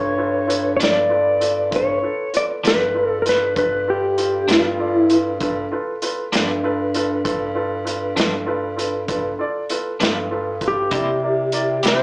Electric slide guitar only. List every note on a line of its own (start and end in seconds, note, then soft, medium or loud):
0.00 0.75 C#5 medium
0.77 0.82 C#5 medium
0.84 1.77 D5 medium
1.76 2.36 C#5 medium
2.37 2.45 D5 medium
2.67 3.09 B4 medium
3.09 3.22 A4 medium
3.22 3.28 A#4 medium
3.29 3.56 B4 medium
3.58 3.89 B4 medium
3.90 4.52 G4 medium
4.52 4.96 F4 medium
4.96 5.16 E4 medium
10.68 11.91 G4 medium
11.88 12.03 C5 medium